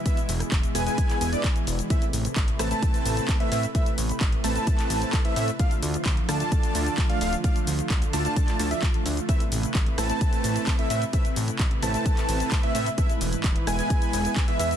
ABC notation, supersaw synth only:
X:1
M:4/4
L:1/16
Q:1/4=130
K:Am
V:1 name="Supersaw synth"
[^G,B,EBe] z4 z [G,B,EB^g] [G,B,EBg]3 [G,B,EBg] [G,B,EBd] z4 | [A,CEBe] z4 z [A,CEBa] [A,CEBa]6 [A,CEBe] [A,CEBe] z | [A,CEBe] z4 z [A,CEBa] [A,CEBa]6 [A,CEBe] [A,CEBe] z | [A,DFdf] z4 z [A,DFda] [A,DFda]6 [A,DFdf] [A,DFdf] z |
[A,DFdf] z4 z [A,DFda] [A,DFda]3 [A,DFda] [A,DFde] z4 | [A,CEBe] z4 z [A,CEBa] [A,CEBa]6 [A,CEBe] [A,CEBe] z | [A,CEBe] z4 z [A,CEBa] [A,CEBa]6 [A,CEBe] [A,CEBe] z | [^G,B,EBe] z4 z [G,B,EB^g] [G,B,EBg]6 [G,B,EBe] [G,B,EBe] z |]